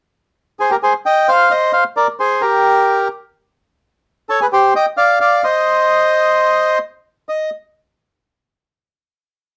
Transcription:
0.60 0.70 G#4 medium
0.60 0.71 C5 medium
0.70 0.75 G4 medium
0.70 0.77 A#4 medium
0.83 0.93 G#4 medium
0.83 0.94 C5 medium
1.06 1.27 D#5 medium
1.06 1.29 G5 medium
1.29 1.49 C5 medium
1.29 1.52 F5 medium
1.51 1.72 C5 medium
1.51 1.73 D#5 medium
1.73 1.84 C5 medium
1.73 1.84 F5 medium
1.97 2.07 A#4 soft
1.97 2.07 D5 medium
2.20 2.42 G#4 medium
2.20 2.42 C5 medium
2.41 3.08 G4 medium
2.41 3.08 A#4 medium
4.29 4.39 A4 medium
4.29 4.40 C#5 medium
4.41 4.46 G#4 soft
4.41 4.47 B4 medium
4.53 4.73 G4 medium
4.53 4.74 C5 medium
4.76 4.86 D#5 medium
4.76 4.86 G5 medium
4.97 5.19 D5 medium
4.97 5.19 F5 medium
5.20 5.42 D5 medium
5.20 5.44 F5 medium
5.44 6.79 C5 medium
5.44 6.78 D#5 medium
7.29 7.50 D#5 medium

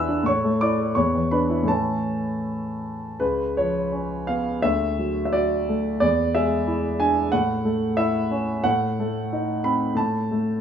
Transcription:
0.00 0.23 E2 medium
0.00 0.29 E3 soft
0.00 0.09 D4 soft
0.00 0.29 E4 soft
0.00 0.29 B4 soft
0.00 0.29 D5 soft
0.00 0.24 E5 medium
0.00 0.29 F#5 medium
0.00 0.29 G#5 medium
0.00 0.26 E6 medium
0.00 0.29 F#6 medium
0.00 0.29 G#6 loud
0.09 0.26 D4 soft
0.23 0.92 A2 soft
0.23 0.61 C#6 medium
0.28 0.59 C#5 medium
0.44 0.72 A3 soft
0.61 0.89 E4 soft
0.61 0.94 D5 medium
0.61 0.96 D6 medium
0.79 0.96 A4 soft
0.95 1.67 E2 medium
0.95 1.30 C#5 medium
0.95 1.31 C#6 medium
1.14 1.43 E3 soft
1.31 1.62 D4 soft
1.31 1.67 B4 medium
1.31 1.69 B5 medium
1.50 1.69 E4 soft
1.63 3.14 A2 soft
1.63 3.15 E3 soft
1.63 3.16 A3 soft
1.63 3.16 C#4 soft
1.68 2.40 A4 soft
1.68 2.44 A5 medium
3.20 4.60 C#2 soft
3.20 3.57 B4 medium
3.57 4.16 F3 soft
3.57 4.30 C#5 medium
3.92 4.50 C#4 soft
4.27 4.64 B3 soft
4.27 4.64 F5 medium
4.62 5.97 D2 soft
4.62 5.24 E5 medium
4.99 5.54 F#3 soft
5.25 5.33 E5 soft
5.33 5.88 F#4 soft
5.33 5.99 D5 medium
5.69 6.02 A3 soft
6.00 7.29 E2 medium
6.00 6.34 D5 medium
6.35 6.88 G#3 soft
6.35 7.01 E5 medium
6.67 7.20 E4 soft
7.00 7.33 D4 soft
7.00 7.33 G#5 medium
7.32 8.61 A2 medium
7.32 7.97 F#5 medium
7.65 8.18 A3 soft
7.97 8.51 E4 soft
7.97 8.64 E5 medium
8.31 8.65 C#4 soft
8.64 9.93 A2 medium
8.64 9.63 F#5 medium
9.00 9.51 A3 soft
9.33 9.84 D#4 soft
9.64 9.97 C4 soft
9.64 9.97 B5 medium
9.95 10.61 A2 soft
9.95 10.61 A5 medium
10.32 10.61 A3 soft

